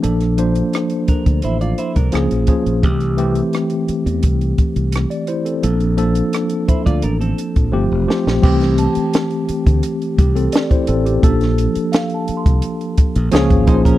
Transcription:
<<
  \new Staff \with { instrumentName = "Celesta" } { \time 4/4 \key c \mixolydian \tempo 4 = 86 r1 | r1 | r1 | r8 a''2.~ a''16 r16 |
r4 f''16 a''16 c'''2~ c'''8 | }
  \new Staff \with { instrumentName = "Clean electric guitar" } { \time 4/4 \key c \mixolydian r4. <d' bes'>8 <e' c''>16 <f' d''>16 <e' c''>16 <d' bes'>8 r8. | r1 | r4. <e' c''>16 <f' d''>16 <d' bes'>16 <c' a'>8. r4 | r1 |
r2. <f' des''>8 <ees' c''>16 <des' bes'>16 | }
  \new Staff \with { instrumentName = "Tine electric piano" } { \time 4/4 \key c \mixolydian << { r1 | r2. r16 d''16 <e' c''>16 <c' a'>16~ | <c' a'>16 r2. r8. | r2 r8 g'16 <c' a'>16 d''16 <e' c''>16 <c' a'>16 g'16~ |
g'16 r2. r8. | } \\ { <f bes d' a'>8 <f bes d' c''>4. r4 <f bes des' aes'>8 <f bes des' aes'>8 | <e a c' g'>8 <e a c' g'>4. r2 | <f bes d' a'>8 <f bes d' a'>4. r4 <f a c' g'>8 <f a c' g'>8 | <e a c' g'>4. r2 r8 |
<f bes des' d' a'>4. r4. <f bes des' aes'>8 <f bes des' aes'>8 | } >> }
  \new Staff \with { instrumentName = "Fingered electric bass" } { \clef bass \time 4/4 \key c \mixolydian bes,,4 r8. d,16 a,,8 r16 c,16 des,16 bes,,16 r16 bes,,16 | c,4 r8. e,16 c,8 r16 c,8 r8. | bes,,4 r8. d,16 a,,8 r16 bes,,16 g,,16 e,,16 r16 bes,,16 | c,8. r4 d,16 r8 c,8 r8 a,,8 |
bes,,8. r4 c,16 r8. bes,,16 des,16 aes,,16 bes,,8 | }
  \new DrumStaff \with { instrumentName = "Drums" } \drummode { \time 4/4 hh16 <hh ss>16 hh16 hh16 <hh ss>16 hh16 <hh bd>16 <hh bd>16 hh16 hh16 hh16 <hh bd>16 <hh ss>16 hh16 <hh bd>16 hh16 | <hh bd>16 <hh ss>16 hh16 hh16 <hh ss>16 hh16 hh16 hh16 <hh bd>16 hh16 <hh bd>16 hh16 <hh ss>16 hh16 hh16 hh16 | hh16 hh16 hh16 hh16 <hh ss>16 hh16 <hh bd>16 <hh bd>16 hh16 hh16 hh16 <hh bd>16 r8 sn16 sn16 | <cymc bd>16 <hh sn>16 hh16 hh16 <hh sn>16 hh16 hh16 <hh bd>16 hh16 hh16 <hh bd>16 hh16 <hh sn>16 <hh bd>16 hh16 hh16 |
<hh bd>16 <hh sn>16 hh16 hh16 <hh sn>16 hh16 hh16 <hh bd>16 hh16 hh16 <hh bd>16 hh16 <hh sn>16 <hh bd>16 <hh bd>16 <hh bd>16 | }
>>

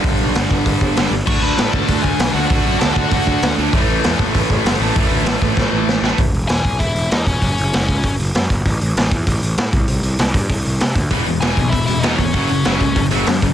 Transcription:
<<
  \new Staff \with { instrumentName = "Lead electric guitar" } { \time 4/4 \key a \major \tempo 4 = 195 r1 | <cis'' cis'''>8 <b' b''>4 <a' a''>4 <gis' gis''>4 <fis' fis''>8 | <fis' fis''>4 <a' a''>8 <fis' fis''>8 <fis' fis''>4. r8 | r1 |
r1 | \key e \major r4 <gis' gis''>8 <gis' gis''>8 <e' e''>4 <dis' dis''>8 <cis' cis''>8~ | <cis' cis''>2~ <cis' cis''>8 r4. | r1 |
r1 | r4 <gis' gis''>8 <gis' gis''>8 <e' e''>8 <e' e''>8 <dis' dis''>8 <cis' cis''>8~ | <cis' cis''>2~ <cis' cis''>8 r4. | }
  \new Staff \with { instrumentName = "Overdriven electric guitar" } { \clef bass \time 4/4 \key a \major <g, d g>2. <g, d g>8 r8 | <d a d'>2.~ <d a d'>8 <d a d'>8 | <d a d'>2.~ <d a d'>8 <d a d'>8 | <a, e a>2.~ <a, e a>8 <a, e a>8 |
<a, e a>2.~ <a, e a>8 <a, e a>8 | \key e \major r1 | r1 | r1 |
r1 | <e, b, e>8 <e, b,>8 <e, b, e>8 <e, b,>8 <e, b,>8 <e, b,>8 <e, b, e>8 <e, b,>8 | <fis, cis fis>8 <fis, cis>8 <fis, cis fis>8 <fis, cis>8 <fis, cis>8 <fis, cis fis>8 <fis, cis>8 <fis, cis>8 | }
  \new Staff \with { instrumentName = "Distorted electric guitar" } { \clef bass \time 4/4 \key a \major <g, d g>2.~ <g, d g>8 r8 | <d a d'>1 | <d a d'>1 | <a, e a>1 |
<a, e a>1 | \key e \major r1 | r1 | r1 |
r1 | <e, b, e>8 <e, b,>8 <e, b, e>8 <e, b,>8 <e, b,>8 <e, b,>8 <e, b, e>8 <e, b,>8 | <fis, cis fis>8 <fis, cis>8 <fis, cis fis>8 <fis, cis>8 <fis, cis>8 <fis, cis fis>8 <fis, cis>8 <fis, cis>8 | }
  \new Staff \with { instrumentName = "Picked electric bass" } { \clef bass \time 4/4 \key a \major g,,8 b,,8 g,,8 g,,8 g,,8 g,,8 g,,8 g,,8 | d,8 d,8 a,8 d,8 d,8 d,8 b,,8 d,8 | d,8 fis,8 d,8 d,8 d,8 d,8 d,8 d,8 | a,,8 a,,8 e,8 a,,8 a,,8 a,,8 fis,,8 a,,8 |
a,,8 d,8 a,,8 a,,8 a,,8 a,,8 a,,8 a,,8 | \key e \major e,,8 e,,8 e,,8 b,,8 e,,8 e,,8 e,8 e,,8 | fis,,8 fis,,8 fis,,8 cis,8 fis,,8 fis,,8 fis,8 fis,,8 | a,,8 a,,8 a,,8 e,8 a,,8 a,,8 a,8 c,8 |
c,8 c,8 c,8 g,8 c,8 c,8 c8 d,8 | e,,8 e,,8 e,,8 b,,8 e,,8 e,,8 e,8 e,,8 | fis,,8 fis,,8 fis,,8 cis,8 fis,,8 fis,,8 fis,8 fis,,8 | }
  \new DrumStaff \with { instrumentName = "Drums" } \drummode { \time 4/4 <hho bd>4 <hho sn>8 bd8 <hho bd>8 bd8 <hho sn>4 | <cymc bd>4 <hho sn>8 bd8 <hho bd>8 bd8 <hho sn>4 | <hho bd>4 <hho sn>8 bd8 <hho bd>8 bd8 <hho sn>4 | <hho bd>4 <hho sn>8 bd8 <hho bd>8 bd8 <hho sn>4 |
<hho bd>4 <hho sn>8 bd8 <bd sn>4 sn8 sn8 | <hho bd>8 hho8 <hho sn>8 <hho bd>8 <hho bd>8 hho8 <hho sn>8 <hho bd>8 | <hho bd>8 hho8 <hho sn>8 <hho bd>8 <hho bd>8 hho8 <hho sn>8 <hho bd>8 | <hho bd>8 hho8 <hho sn>8 <hho bd>8 <hho bd>8 hho8 <hho sn>8 <hho bd>8 |
hho8 hho8 <hho sn>8 <hho bd>8 <hho bd>8 hho8 <hho sn>8 <hho bd>8 | <hho bd>8 hho8 <hho sn>8 <hho bd>8 <hho bd>8 hho8 <hho sn>8 <hho bd>8 | <hho bd>8 hho8 <hho sn>8 <hho bd>8 <hho bd>8 hho8 <hho sn>8 <hho bd>8 | }
>>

